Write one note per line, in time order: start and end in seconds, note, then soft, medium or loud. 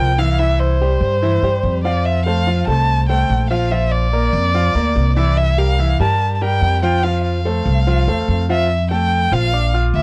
0.00 0.95 C2 medium
0.00 0.11 F3 medium
0.00 0.11 F4 medium
0.00 0.11 A#4 medium
0.00 0.20 G5 loud
0.18 0.35 E3 medium
0.18 0.36 E4 medium
0.18 0.36 E5 medium
0.18 0.40 F5 loud
0.39 0.73 E3 medium
0.39 0.73 E4 medium
0.39 0.61 E5 loud
0.39 0.74 E5 medium
0.59 1.84 C5 loud
0.81 1.15 G3 medium
0.81 1.15 G4 medium
0.81 1.15 C5 medium
1.01 1.40 G2 loud
1.22 1.39 E3 medium
1.22 1.39 E4 medium
1.22 1.40 E5 medium
1.42 1.62 G2 medium
1.42 1.77 G3 medium
1.42 1.77 G4 medium
1.42 1.78 C5 medium
1.63 2.61 F2 medium
1.84 2.19 F3 medium
1.84 2.19 F4 medium
1.84 2.07 D5 medium
1.84 2.19 F5 medium
2.05 2.25 E5 medium
2.26 2.43 A3 medium
2.26 2.43 A4 medium
2.26 2.44 C5 medium
2.26 2.65 F5 medium
2.47 2.64 F3 medium
2.47 2.64 F4 medium
2.47 2.64 F5 medium
2.67 3.26 C2 loud
2.67 3.02 A3 medium
2.67 3.02 A4 medium
2.67 3.02 C5 medium
2.67 3.06 A5 loud
3.09 3.43 A3 medium
3.09 3.43 A4 medium
3.09 3.43 C5 medium
3.09 3.48 G5 loud
3.30 4.27 A#1 medium
3.50 3.68 F3 medium
3.50 3.68 F4 medium
3.50 3.73 F5 medium
3.50 3.68 F5 medium
3.71 4.05 F3 medium
3.71 4.05 F4 medium
3.71 3.93 E5 loud
3.71 4.06 F5 medium
3.92 5.16 D5 loud
4.13 4.47 A#3 medium
4.13 4.47 A#4 medium
4.13 4.47 D5 medium
4.33 4.72 F2 loud
4.54 4.71 F3 medium
4.54 4.72 F4 medium
4.54 4.72 F5 medium
4.75 4.94 D2 medium
4.75 5.09 A#3 medium
4.75 5.09 A#4 medium
4.75 5.10 D5 medium
4.96 5.94 C2 loud
5.16 5.51 E3 medium
5.16 5.51 E4 medium
5.16 5.39 D5 medium
5.16 5.51 E5 medium
5.37 5.60 E5 loud
5.58 5.75 G3 medium
5.58 5.75 G4 medium
5.58 5.75 A#4 medium
5.58 6.00 F5 medium
5.79 5.96 E3 medium
5.79 5.96 E4 medium
5.79 5.96 E5 medium
5.99 6.58 G2 loud
5.99 6.34 G3 medium
5.99 6.34 G4 medium
5.99 6.34 A#4 medium
5.99 6.35 A5 loud
6.35 6.43 A5 medium
6.41 6.75 G3 medium
6.41 6.76 G4 medium
6.41 6.76 A#4 medium
6.41 6.82 G5 loud
6.61 7.60 F2 medium
6.83 7.00 F3 medium
6.83 7.00 F4 medium
6.83 7.00 F5 medium
6.83 7.05 G5 medium
7.03 7.38 F3 medium
7.03 7.38 F4 medium
7.03 7.24 F5 medium
7.03 7.38 F5 medium
7.24 8.45 F5 medium
7.45 7.79 A3 medium
7.45 7.79 A4 medium
7.45 7.80 C5 medium
7.66 8.04 C2 loud
7.87 8.04 F3 medium
7.87 8.04 F4 medium
7.87 8.04 F5 medium
8.07 8.27 E2 medium
8.07 8.42 A3 medium
8.07 8.42 A4 medium
8.07 8.42 C5 medium
8.28 9.26 F2 medium
8.49 8.66 F3 medium
8.49 8.66 F4 medium
8.49 8.88 E5 loud
8.49 8.67 F5 medium
8.91 9.25 A3 medium
8.91 9.25 A4 medium
8.91 9.35 G5 loud
8.91 9.25 A5 medium
9.32 9.90 A#1 loud
9.32 9.49 F3 medium
9.32 9.49 F4 medium
9.32 9.49 F5 medium
9.32 9.74 F5 loud
9.53 9.70 D4 medium
9.53 9.70 D5 medium
9.53 9.70 D6 medium
9.74 10.03 F4 medium
9.74 10.03 F5 medium
9.74 10.03 F6 medium
9.94 10.03 D2 loud
9.94 10.03 E5 loud